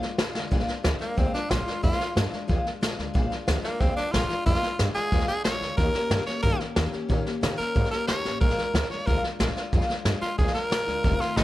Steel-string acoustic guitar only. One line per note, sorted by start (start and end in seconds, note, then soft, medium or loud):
0.02 0.18 G#3 soft
0.02 0.18 D4 medium
0.02 0.18 F4 medium
0.18 0.35 F3 medium
0.18 0.35 G#3 medium
0.18 0.35 D4 medium
0.18 0.34 F4 medium
0.35 0.50 G#3 soft
0.35 0.51 D4 medium
0.35 0.51 F4 medium
0.51 0.68 A#2 loud
0.51 0.68 F3 loud
0.51 0.68 G#3 loud
0.51 0.67 D4 loud
0.51 0.66 F4 loud
0.67 0.83 G#3 medium
0.67 0.84 D4 medium
0.67 0.84 F4 medium
0.83 1.00 F3 medium
0.83 1.01 G#3 medium
0.83 1.00 D4 medium
0.83 0.99 F4 medium
1.00 1.16 G#3 soft
1.00 1.17 D4 medium
1.00 1.17 F4 medium
1.17 1.33 A#2 medium
1.17 1.34 F3 medium
1.17 1.34 G#3 medium
1.17 1.34 D4 medium
1.17 1.33 F4 medium
1.34 1.50 G#3 soft
1.34 1.51 D4 soft
1.34 1.50 F4 soft
1.50 1.67 F3 medium
1.50 1.67 G#3 medium
1.50 1.66 D4 medium
1.50 1.65 F4 medium
1.66 1.82 G#3 soft
1.66 1.83 D4 medium
1.66 1.83 F4 medium
1.82 1.99 A#2 medium
1.82 1.99 F3 medium
1.82 2.00 G#3 medium
1.82 1.99 D4 medium
1.82 1.97 F4 medium
1.99 2.14 G#3 soft
1.99 2.15 D4 soft
1.99 2.16 F4 medium
2.15 2.32 F3 medium
2.15 2.32 G#3 medium
2.15 2.31 D4 medium
2.15 2.30 F4 medium
2.31 2.48 G#3 soft
2.31 2.48 D4 medium
2.31 2.48 F4 medium
2.48 2.65 A#2 medium
2.48 2.65 F3 loud
2.48 2.65 G#3 loud
2.48 2.64 D4 loud
2.48 2.63 F4 loud
2.64 2.81 G#3 soft
2.64 2.82 D4 soft
2.64 2.81 F4 medium
2.81 2.98 F3 medium
2.81 2.98 G#3 medium
2.81 2.98 D4 medium
2.81 2.96 F4 medium
2.97 3.13 G#3 medium
2.97 3.14 D4 medium
2.97 3.14 F4 medium
3.14 3.31 A#2 loud
3.14 3.31 F3 medium
3.14 3.31 G#3 loud
3.14 3.30 D4 medium
3.14 3.29 F4 loud
3.30 3.47 G#3 soft
3.30 3.48 D4 medium
3.30 3.47 F4 medium
3.47 3.64 F3 medium
3.47 3.64 G#3 medium
3.47 3.64 D4 medium
3.47 3.63 F4 medium
3.64 3.80 G#3 soft
3.64 3.80 D4 medium
3.64 3.80 F4 medium
3.80 3.97 A#2 medium
3.80 3.97 F3 medium
3.80 3.97 G#3 medium
3.80 3.97 D4 medium
3.80 3.96 F4 loud
3.97 4.13 G#3 soft
3.97 4.14 D4 soft
3.97 4.13 F4 soft
4.13 4.30 F3 medium
4.13 4.30 G#3 medium
4.13 4.30 D4 medium
4.13 4.28 F4 medium
4.30 4.46 G#3 soft
4.30 4.46 D4 medium
4.30 4.46 F4 medium
4.46 4.63 A#2 medium
4.46 4.63 F3 medium
4.46 4.63 G#3 medium
4.46 4.63 D4 medium
4.46 4.61 F4 medium
4.63 4.78 G#3 soft
4.63 4.79 D4 medium
4.63 4.79 F4 medium
4.79 4.95 F3 medium
4.79 4.96 G#3 medium
4.79 4.95 D4 medium
4.79 4.93 F4 medium
4.95 5.11 G#3 soft
4.95 5.12 D4 soft
4.95 5.12 F4 medium
5.12 5.28 A#2 medium
5.12 5.28 F3 medium
5.12 5.29 G#3 loud
5.12 5.28 D4 medium
5.12 5.27 F4 medium
5.28 5.44 G#3 soft
5.28 5.45 D4 soft
5.28 5.45 F4 soft
5.44 5.61 F3 medium
5.44 5.61 G#3 medium
5.44 5.61 D4 medium
5.44 5.59 F4 medium
5.61 5.78 G#3 medium
5.61 5.78 D4 soft
5.61 5.77 F4 medium
5.78 5.94 D#3 medium
5.78 5.95 A#3 medium
5.78 5.94 C#4 medium
5.78 5.92 G4 medium
5.93 6.10 A#3 soft
5.93 6.10 C#4 medium
5.93 6.10 G4 medium
6.09 6.26 D#3 medium
6.09 6.27 A#3 medium
6.09 6.26 C#4 medium
6.09 6.25 G4 medium
6.26 6.43 A#3 soft
6.26 6.44 C#4 medium
6.26 6.43 G4 soft
6.44 6.60 D#3 medium
6.44 6.60 A#3 loud
6.44 6.60 C#4 medium
6.44 6.59 G4 loud
6.60 6.76 A#3 soft
6.60 6.76 C#4 soft
6.60 6.76 G4 soft
6.76 6.93 D#3 medium
6.76 6.93 A#3 medium
6.76 6.92 C#4 medium
6.76 6.91 G4 medium
6.92 7.08 A#3 soft
6.92 7.09 C#4 medium
6.92 7.09 G4 medium
7.08 7.25 D#3 medium
7.08 7.26 A#3 loud
7.08 7.25 C#4 loud
7.08 7.23 G4 loud
7.25 7.41 A#3 medium
7.25 7.42 C#4 medium
7.25 7.42 G4 medium
7.41 7.58 D#3 medium
7.41 7.59 A#3 medium
7.41 7.58 C#4 medium
7.41 7.57 G4 medium
7.59 7.74 A#3 soft
7.59 7.74 C#4 soft
7.75 7.91 D#3 medium
7.75 7.91 A#3 medium
7.75 7.91 C#4 medium
7.75 7.89 G4 medium
7.90 8.07 A#3 soft
7.90 8.08 C#4 soft
7.90 8.07 G4 medium
8.07 8.24 D#3 medium
8.07 8.25 A#3 medium
8.07 8.24 C#4 medium
8.07 8.22 G4 medium
8.24 8.41 A#3 soft
8.24 8.41 C#4 soft
8.24 8.40 G4 medium
8.40 8.57 A#2 medium
8.40 8.57 F3 medium
8.40 8.58 G#3 loud
8.40 8.57 D4 medium
8.40 8.56 F4 loud
8.57 8.74 G#3 medium
8.57 8.74 D4 medium
8.57 8.74 F4 medium
8.74 8.90 F3 medium
8.74 8.91 G#3 medium
8.74 8.90 D4 medium
8.74 8.89 F4 medium
8.90 9.06 G#3 soft
8.90 9.07 D4 soft
8.90 9.06 F4 medium
9.06 9.23 A#2 medium
9.06 9.23 F3 medium
9.06 9.23 G#3 medium
9.06 9.23 D4 loud
9.06 9.22 F4 medium
9.23 9.39 G#3 soft
9.23 9.40 D4 soft
9.23 9.40 F4 medium
9.39 9.56 F3 medium
9.39 9.56 G#3 medium
9.39 9.55 D4 medium
9.39 9.54 F4 medium
9.56 9.72 G#3 medium
9.56 9.73 D4 medium
9.56 9.72 F4 medium
9.73 9.89 A#2 medium
9.73 9.89 F3 medium
9.73 9.89 G#3 loud
9.73 9.89 D4 medium
9.73 9.87 F4 loud
9.88 10.04 G#3 medium
9.88 10.05 D4 medium
9.88 10.05 F4 medium
10.05 10.22 F3 medium
10.05 10.22 G#3 medium
10.05 10.22 D4 medium
10.05 10.20 F4 medium
10.21 10.38 G#3 soft
10.21 10.38 D4 medium
10.21 10.38 F4 medium
10.38 10.55 A#2 medium
10.38 10.55 F3 medium
10.38 10.55 G#3 medium
10.38 10.54 D4 medium
10.38 10.53 F4 medium
10.54 10.70 G#3 soft
10.54 10.71 D4 soft
10.54 10.71 F4 medium
10.70 10.87 F3 medium
10.70 10.88 G#3 medium
10.70 10.87 D4 medium
10.70 10.85 F4 medium
10.86 11.04 G#3 soft
10.86 11.04 D4 medium
10.86 11.03 F4 medium
11.03 11.20 F2 medium
11.03 11.21 C3 medium
11.03 11.21 D#3 loud
11.03 11.20 A3 loud
11.03 11.19 C4 loud
11.03 11.18 F4 loud
11.19 11.35 D#3 soft
11.19 11.36 A3 medium
11.19 11.37 C4 medium
11.19 11.37 F4 medium
11.36 11.44 D#3 medium
11.36 11.44 A3 medium
11.36 11.44 C4 medium
11.36 11.44 F4 medium